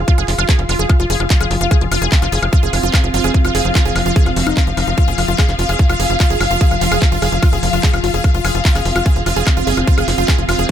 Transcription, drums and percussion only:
0.08 kick loud
0.08 closed hi-hat medium
0.18 closed hi-hat soft
0.18 high woodblock soft
0.28 clap soft
0.28 open hi-hat loud
0.38 closed hi-hat soft
0.38 high woodblock medium
0.49 kick loud
0.49 clap loud
0.49 closed hi-hat medium
0.59 closed hi-hat soft
0.69 open hi-hat loud
0.69 high woodblock soft
0.89 kick loud
0.89 closed hi-hat medium
0.89 high woodblock medium
1.00 closed hi-hat soft
1.10 open hi-hat loud
1.20 closed hi-hat soft
1.20 high woodblock soft
1.30 kick loud
1.30 clap loud
1.30 closed hi-hat medium
1.41 closed hi-hat soft
1.41 high woodblock medium
1.51 open hi-hat loud
1.61 closed hi-hat soft
1.71 kick loud
1.71 closed hi-hat medium
1.71 high woodblock soft
1.81 closed hi-hat soft
1.92 open hi-hat loud
1.92 high woodblock medium
2.02 closed hi-hat soft
2.12 kick loud
2.12 clap loud
2.12 closed hi-hat medium
2.22 clap soft
2.22 closed hi-hat soft
2.22 high woodblock soft
2.32 open hi-hat loud
2.43 closed hi-hat soft
2.43 high woodblock medium
2.53 kick loud
2.53 closed hi-hat medium
2.63 closed hi-hat soft
2.73 open hi-hat loud
2.73 high woodblock soft
2.83 closed hi-hat soft
2.94 kick loud
2.94 clap loud
2.94 closed hi-hat medium
2.94 high woodblock medium
3.04 closed hi-hat soft
3.14 open hi-hat loud
3.24 closed hi-hat soft
3.24 high woodblock soft
3.34 kick loud
3.34 closed hi-hat medium
3.45 closed hi-hat soft
3.45 high woodblock medium
3.55 clap soft
3.55 open hi-hat loud
3.75 kick loud
3.75 clap loud
3.75 closed hi-hat medium
3.75 high woodblock soft
3.85 closed hi-hat soft
3.96 open hi-hat loud
3.96 high woodblock medium
4.06 closed hi-hat soft
4.16 kick loud
4.16 closed hi-hat medium
4.26 closed hi-hat soft
4.26 high woodblock soft
4.36 open hi-hat loud
4.47 high woodblock medium
4.57 kick loud
4.57 clap loud
4.57 closed hi-hat medium
4.67 closed hi-hat soft
4.77 open hi-hat loud
4.77 high woodblock soft
4.87 closed hi-hat soft
4.98 kick loud
4.98 closed hi-hat medium
5.08 closed hi-hat soft
5.18 open hi-hat loud
5.18 high woodblock soft
5.28 closed hi-hat soft
5.38 kick loud
5.38 clap loud
5.38 closed hi-hat medium
5.38 high woodblock medium
5.49 clap soft
5.49 closed hi-hat soft
5.59 open hi-hat loud
5.69 high woodblock soft
5.79 kick loud
5.79 closed hi-hat medium
5.89 closed hi-hat soft
5.89 high woodblock medium
6.00 open hi-hat loud
6.10 closed hi-hat soft
6.20 kick loud
6.20 clap loud
6.20 closed hi-hat medium
6.20 high woodblock soft
6.30 closed hi-hat soft
6.41 open hi-hat loud
6.41 high woodblock medium
6.51 closed hi-hat soft
6.61 kick loud
6.61 closed hi-hat medium
6.71 closed hi-hat soft
6.71 high woodblock soft
6.81 clap soft
6.81 open hi-hat loud
6.92 high woodblock medium
7.02 kick loud
7.02 clap loud
7.02 closed hi-hat medium
7.12 closed hi-hat soft
7.22 open hi-hat loud
7.22 high woodblock soft
7.32 closed hi-hat soft
7.43 kick loud
7.43 closed hi-hat medium
7.43 high woodblock medium
7.53 closed hi-hat soft
7.63 open hi-hat loud
7.73 closed hi-hat soft
7.73 high woodblock soft
7.83 kick loud
7.83 clap loud
7.83 closed hi-hat medium
7.94 closed hi-hat soft
7.94 high woodblock medium
8.04 open hi-hat loud
8.14 closed hi-hat soft
8.24 kick loud
8.24 closed hi-hat medium
8.24 high woodblock soft
8.34 closed hi-hat soft
8.45 open hi-hat loud
8.45 high woodblock medium
8.65 kick loud
8.65 clap loud
8.65 closed hi-hat medium
8.75 clap soft
8.75 closed hi-hat soft
8.75 high woodblock soft
8.85 open hi-hat loud
8.96 closed hi-hat soft
8.96 high woodblock medium
9.06 kick loud
9.06 closed hi-hat medium
9.16 closed hi-hat soft
9.26 open hi-hat loud
9.26 high woodblock soft
9.36 closed hi-hat soft
9.47 kick loud
9.47 clap loud
9.47 closed hi-hat medium
9.47 high woodblock medium
9.57 closed hi-hat soft
9.67 open hi-hat loud
9.77 closed hi-hat soft
9.77 high woodblock soft
9.87 kick loud
9.87 closed hi-hat medium
9.98 closed hi-hat soft
9.98 high woodblock medium
10.08 clap soft
10.08 open hi-hat loud
10.18 closed hi-hat soft
10.28 kick loud
10.28 clap loud
10.28 closed hi-hat medium
10.28 high woodblock soft
10.38 closed hi-hat soft
10.49 open hi-hat loud
10.49 high woodblock medium
10.59 closed hi-hat soft

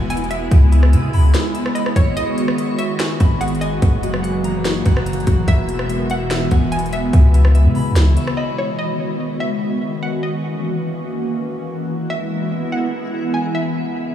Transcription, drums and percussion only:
0.10 closed hi-hat medium
0.17 closed hi-hat medium
0.24 closed hi-hat soft
0.31 closed hi-hat medium
0.51 kick loud
0.51 closed hi-hat medium
0.72 closed hi-hat medium
0.83 cross-stick loud
0.93 closed hi-hat medium
1.13 open hi-hat medium
1.34 snare loud
1.34 closed hi-hat medium
1.55 closed hi-hat medium
1.66 cross-stick loud
1.75 closed hi-hat medium
1.86 cross-stick loud
1.96 kick medium
1.96 closed hi-hat medium
2.17 closed hi-hat medium
2.38 closed hi-hat medium
2.48 cross-stick loud
2.58 closed hi-hat medium
2.79 closed hi-hat medium
2.99 snare loud
2.99 closed hi-hat medium
3.20 kick loud
3.20 closed hi-hat medium
3.41 closed hi-hat medium
3.48 closed hi-hat medium
3.55 closed hi-hat soft
3.61 closed hi-hat medium
3.82 kick loud
3.82 closed hi-hat medium
4.03 closed hi-hat medium
4.14 cross-stick loud
4.24 closed hi-hat medium
4.44 closed hi-hat medium
4.65 snare loud
4.65 closed hi-hat medium
4.86 kick loud
4.86 closed hi-hat medium
4.97 cross-stick loud
5.06 closed hi-hat medium
5.13 closed hi-hat medium
5.20 closed hi-hat soft
5.27 kick medium
5.27 closed hi-hat medium
5.48 kick loud
5.48 closed hi-hat medium
5.69 closed hi-hat medium
5.79 cross-stick loud
5.89 closed hi-hat medium
6.10 closed hi-hat medium
6.31 snare loud
6.31 closed hi-hat medium
6.51 kick medium
6.51 closed hi-hat medium
6.72 closed hi-hat medium
6.79 closed hi-hat medium
6.86 closed hi-hat soft
6.93 closed hi-hat medium
7.13 kick loud
7.13 closed hi-hat medium
7.34 closed hi-hat medium
7.45 cross-stick loud
7.55 closed hi-hat medium
7.75 open hi-hat medium
7.96 snare loud
7.96 closed hi-hat medium
8.17 closed hi-hat medium
8.27 cross-stick loud

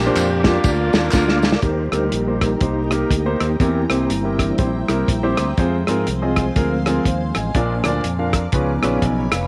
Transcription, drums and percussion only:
0.16 clap medium
0.16 ride bell medium
0.16 tambourine medium
0.44 kick medium
0.44 snare loud
0.44 ride bell medium
0.44 tambourine medium
0.64 kick loud
0.64 ride bell medium
0.64 tambourine loud
0.93 snare loud
0.93 ride bell medium
0.93 tambourine medium
1.11 kick medium
1.11 snare medium
1.11 clap medium
1.11 tambourine medium
1.28 snare medium
1.42 snare medium
1.42 tambourine soft
1.52 snare loud
1.62 kick medium
1.62 closed hi-hat medium
1.92 cross-stick medium
1.92 closed hi-hat medium
2.12 closed hi-hat medium
2.41 kick medium
2.41 cross-stick medium
2.41 closed hi-hat medium
2.61 kick loud
2.61 closed hi-hat medium
2.91 cross-stick medium
2.91 closed hi-hat medium
3.11 kick medium
3.11 closed hi-hat medium
3.40 cross-stick medium
3.40 closed hi-hat medium
3.60 kick medium
3.60 closed hi-hat medium
3.90 cross-stick medium
3.90 closed hi-hat medium
4.10 closed hi-hat medium
4.39 kick medium
4.39 cross-stick medium
4.39 closed hi-hat medium
4.58 kick loud
4.58 closed hi-hat medium
4.88 cross-stick loud
4.88 closed hi-hat medium
5.08 kick medium
5.08 closed hi-hat medium
5.37 cross-stick loud
5.37 closed hi-hat medium
5.57 kick medium
5.57 closed hi-hat medium
5.87 cross-stick medium
5.87 closed hi-hat medium
6.07 closed hi-hat medium
6.36 kick medium
6.36 cross-stick medium
6.36 closed hi-hat medium
6.56 kick medium
6.56 closed hi-hat medium
6.86 cross-stick loud
6.86 closed hi-hat medium
7.05 kick medium
7.05 closed hi-hat medium
7.35 cross-stick medium
7.35 closed hi-hat medium
7.55 kick medium
7.55 closed hi-hat medium
7.84 cross-stick medium
7.84 closed hi-hat medium
8.04 closed hi-hat medium
8.33 kick medium
8.33 cross-stick medium
8.33 closed hi-hat medium
8.52 kick loud
8.52 closed hi-hat medium
8.83 cross-stick medium
8.83 closed hi-hat medium
9.02 kick medium
9.02 closed hi-hat medium
9.32 cross-stick loud
9.32 closed hi-hat medium

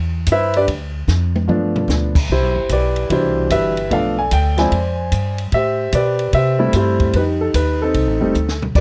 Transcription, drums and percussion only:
0.26 kick soft
0.26 hi-hat pedal medium
0.26 ride medium
0.54 ride soft
0.68 kick soft
0.68 ride medium
1.08 snare medium
1.08 hi-hat pedal medium
1.36 high tom medium
1.49 mid tom medium
1.76 floor tom medium
1.89 snare medium
1.89 hi-hat pedal medium
2.15 kick medium
2.15 crash medium
2.29 kick soft
2.69 kick soft
2.69 hi-hat pedal medium
2.69 ride medium
2.96 ride soft
3.10 kick soft
3.10 ride medium
3.50 kick soft
3.50 hi-hat pedal medium
3.50 ride medium
3.77 ride soft
3.91 kick soft
3.91 ride medium
4.31 kick soft
4.31 hi-hat pedal medium
4.31 ride medium
4.58 snare soft
4.58 ride soft
4.72 kick soft
4.72 ride medium
5.12 kick soft
5.12 hi-hat pedal medium
5.12 ride medium
5.38 ride soft
5.52 kick soft
5.52 ride medium
5.92 kick soft
5.92 hi-hat pedal medium
5.92 ride medium
6.19 ride soft
6.33 kick soft
6.33 ride medium
6.73 kick soft
6.73 hi-hat pedal medium
6.73 ride medium
7.00 kick soft
7.00 ride soft
7.13 kick soft
7.13 ride medium
7.54 kick soft
7.54 hi-hat pedal medium
7.54 ride medium
7.94 kick soft
7.94 ride medium
8.35 hi-hat pedal medium
8.49 snare medium
8.62 floor tom medium
8.75 kick medium
8.75 crash medium

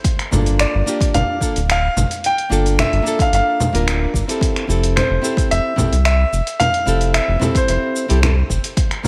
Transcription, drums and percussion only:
0.04 kick loud
0.04 closed hi-hat medium
0.04 cabasa soft
0.19 finger snap soft
0.19 closed hi-hat soft
0.32 low conga medium
0.32 cabasa medium
0.46 closed hi-hat soft
0.46 cabasa soft
0.59 finger snap loud
0.59 closed hi-hat medium
0.59 cabasa soft
0.88 cabasa medium
1.01 kick loud
1.01 closed hi-hat soft
1.01 cabasa soft
1.14 closed hi-hat medium
1.14 low conga medium
1.14 cabasa soft
1.41 kick medium
1.41 cabasa medium
1.56 closed hi-hat soft
1.56 cabasa soft
1.70 finger snap medium
1.70 closed hi-hat medium
1.70 cabasa soft
1.97 low conga medium
1.97 cabasa medium
2.11 closed hi-hat soft
2.11 cabasa soft
2.24 closed hi-hat medium
2.24 cabasa soft
2.38 closed hi-hat soft
2.52 cabasa medium
2.66 closed hi-hat soft
2.66 cabasa soft
2.79 finger snap loud
2.79 closed hi-hat medium
2.79 low conga medium
2.79 cabasa soft
2.93 closed hi-hat soft
3.07 cabasa medium
3.19 kick loud
3.19 closed hi-hat soft
3.19 cabasa soft
3.33 closed hi-hat medium
3.33 cabasa soft
3.60 low conga medium
3.60 cabasa medium
3.75 closed hi-hat soft
3.75 cabasa soft
3.88 finger snap medium
3.88 closed hi-hat soft
3.88 cabasa soft
4.14 kick medium
4.14 cabasa medium
4.29 closed hi-hat soft
4.29 cabasa soft
4.41 kick loud
4.41 closed hi-hat medium
4.41 cabasa soft
4.56 finger snap soft
4.56 closed hi-hat soft
4.70 cabasa medium
4.83 closed hi-hat soft
4.83 cabasa soft
4.97 finger snap medium
4.97 closed hi-hat medium
4.97 low conga medium
4.97 cabasa soft
5.24 cabasa medium
5.37 kick loud
5.37 closed hi-hat soft
5.37 cabasa soft
5.51 closed hi-hat medium
5.51 cabasa soft
5.77 kick medium
5.77 low conga medium
5.77 cabasa medium
5.93 closed hi-hat soft
5.93 cabasa soft
6.05 finger snap medium
6.05 closed hi-hat soft
6.05 cabasa soft
6.33 cabasa medium
6.47 closed hi-hat soft
6.47 cabasa soft
6.60 closed hi-hat medium
6.60 low conga medium
6.60 cabasa soft
6.74 closed hi-hat soft
6.87 cabasa medium
7.01 closed hi-hat soft
7.01 cabasa soft
7.14 finger snap loud
7.14 closed hi-hat medium
7.14 cabasa soft
7.41 low conga medium
7.41 cabasa medium
7.55 kick loud
7.55 closed hi-hat soft
7.55 cabasa soft
7.68 closed hi-hat medium
7.68 cabasa soft
7.96 cabasa medium
8.10 closed hi-hat soft
8.10 cabasa soft
8.23 finger snap medium
8.23 closed hi-hat soft
8.23 low conga medium
8.23 cabasa soft
8.50 kick medium
8.50 cabasa medium
8.64 closed hi-hat soft
8.64 cabasa soft
8.77 kick loud
8.77 closed hi-hat medium
8.77 cabasa soft
8.91 finger snap soft
8.91 closed hi-hat soft
9.05 low conga medium

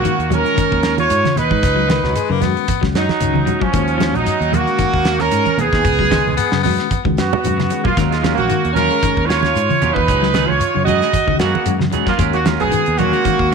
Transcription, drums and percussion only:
0.05 closed hi-hat medium
0.05 shekere loud
0.20 closed hi-hat soft
0.31 closed hi-hat medium
0.31 high conga medium
0.31 low conga medium
0.31 shekere soft
0.46 closed hi-hat soft
0.57 kick medium
0.57 closed hi-hat medium
0.57 shekere medium
0.72 kick medium
0.83 snare medium
0.83 closed hi-hat medium
0.83 shekere soft
0.98 closed hi-hat soft
0.98 high conga loud
1.10 closed hi-hat medium
1.10 shekere medium
1.25 snare soft
1.25 closed hi-hat soft
1.25 high conga medium
1.37 closed hi-hat medium
1.37 low conga medium
1.37 shekere soft
1.51 kick medium
1.51 high conga medium
1.63 kick loud
1.63 snare soft
1.63 closed hi-hat medium
1.63 shekere loud
1.90 snare medium
1.90 closed hi-hat medium
1.90 high conga loud
1.90 shekere soft
2.04 snare soft
2.04 low conga medium
2.16 closed hi-hat medium
2.16 shekere loud
2.42 snare soft
2.42 closed hi-hat medium
2.42 high conga medium
2.42 low conga medium
2.42 shekere soft
2.57 closed hi-hat soft
2.68 kick medium
2.68 closed hi-hat medium
2.68 high conga medium
2.68 shekere loud
2.83 kick medium
2.83 snare soft
2.95 snare medium
2.95 closed hi-hat medium
2.95 shekere soft
3.09 snare soft
3.09 high conga loud
3.20 closed hi-hat medium
3.20 shekere loud
3.35 high conga medium
3.47 closed hi-hat medium
3.47 low conga medium
3.47 shekere soft
3.61 kick medium
3.74 kick loud
3.74 closed hi-hat medium
3.74 shekere medium
3.88 closed hi-hat soft
4.00 snare medium
4.00 closed hi-hat medium
4.00 high conga loud
4.00 shekere soft
4.15 closed hi-hat soft
4.15 low conga medium
4.26 closed hi-hat medium
4.26 shekere loud
4.42 closed hi-hat soft
4.53 closed hi-hat medium
4.53 high conga medium
4.53 low conga medium
4.53 shekere soft
4.67 closed hi-hat soft
4.78 kick medium
4.78 closed hi-hat medium
4.78 shekere medium
4.94 kick medium
5.05 snare medium
5.05 closed hi-hat medium
5.05 shekere soft
5.20 snare soft
5.20 closed hi-hat soft
5.20 high conga loud
5.31 closed hi-hat medium
5.31 shekere medium
5.46 closed hi-hat soft
5.46 high conga medium
5.58 closed hi-hat medium
5.58 low conga medium
5.58 shekere soft
5.73 kick medium
5.73 snare soft
5.85 kick loud
5.85 closed hi-hat medium
5.85 shekere loud
5.99 kick medium
6.11 kick medium
6.11 snare medium
6.11 closed hi-hat medium
6.11 high conga loud
6.11 shekere soft
6.27 high conga medium
6.27 low conga medium
6.38 closed hi-hat medium
6.38 shekere loud
6.52 snare medium
6.64 snare soft
6.64 open hi-hat medium
6.64 high conga medium
6.64 low conga medium
6.64 shekere soft
6.78 snare soft
6.78 closed hi-hat soft
6.91 kick medium
6.91 closed hi-hat medium
6.91 high conga medium
6.91 shekere medium
7.05 kick medium
7.05 high conga medium
7.17 snare medium
7.17 closed hi-hat medium
7.17 high conga loud
7.17 shekere soft
7.33 low conga loud
7.44 closed hi-hat medium
7.44 low conga loud
7.44 shekere medium
7.59 snare soft
7.59 low conga medium
7.70 closed hi-hat medium
7.70 shekere soft
7.85 kick medium
7.85 low conga loud
7.97 kick loud
7.97 snare soft
7.97 closed hi-hat medium
7.97 shekere medium
8.12 snare soft
8.12 closed hi-hat soft
8.24 snare medium
8.24 closed hi-hat medium
8.24 high conga loud
8.24 shekere soft
8.38 closed hi-hat soft
8.38 high conga medium
8.50 closed hi-hat medium
8.50 shekere loud
8.65 closed hi-hat soft
8.76 closed hi-hat medium
8.76 high conga medium
8.76 low conga medium
8.76 shekere soft
8.91 closed hi-hat soft
9.03 kick medium
9.03 closed hi-hat medium
9.03 shekere medium
9.17 kick medium
9.30 snare medium
9.30 closed hi-hat medium
9.30 shekere soft
9.43 snare soft
9.43 closed hi-hat soft
9.43 high conga loud
9.55 closed hi-hat medium
9.55 shekere medium
9.70 closed hi-hat soft
9.70 high conga medium
9.82 closed hi-hat medium
9.82 low conga medium
9.82 shekere soft
9.96 kick medium
9.96 high conga medium
10.08 kick medium
10.08 closed hi-hat medium
10.08 shekere loud
10.23 snare soft
10.34 snare medium
10.34 closed hi-hat medium
10.34 high conga loud
10.34 shekere soft
10.49 high conga medium
10.60 closed hi-hat medium
10.60 shekere loud
10.87 closed hi-hat medium
10.87 high conga medium
10.87 low conga medium
10.87 shekere soft
11.02 snare soft
11.02 closed hi-hat soft
11.13 kick medium
11.13 closed hi-hat medium
11.13 high conga medium
11.13 shekere medium
11.28 kick medium
11.39 snare medium
11.39 closed hi-hat medium
11.39 shekere soft
11.55 high conga loud
11.66 closed hi-hat medium
11.66 shekere medium
11.81 snare soft
11.81 high conga medium
11.92 closed hi-hat medium
11.92 low conga medium
11.92 shekere soft
12.06 kick medium
12.06 snare soft
12.19 kick loud
12.19 closed hi-hat medium
12.19 shekere loud
12.33 closed hi-hat soft
12.46 snare medium
12.46 closed hi-hat medium
12.46 high conga loud
12.46 shekere soft
12.60 closed hi-hat soft
12.60 low conga medium
12.72 closed hi-hat medium
12.72 shekere loud
12.86 closed hi-hat soft
12.98 closed hi-hat medium
12.98 high conga medium
12.98 low conga medium
12.98 shekere soft
13.13 closed hi-hat soft
13.25 kick medium
13.25 closed hi-hat medium
13.25 high conga medium
13.25 shekere medium
13.39 kick medium

